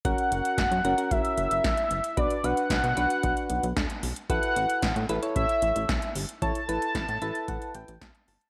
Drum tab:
HH |xxxxxxxxxxxxxxxx|xxxxxxxxxxxxxxox|xxxxxxxxxxxxxxox|xxxxxxxxxxxxxxox|
SD |----o-------o---|----o-------o---|----o-------o---|----o-------o---|
BD |o---o---o---o---|o---o---o---o---|o---o---o---o---|o---o---o---o---|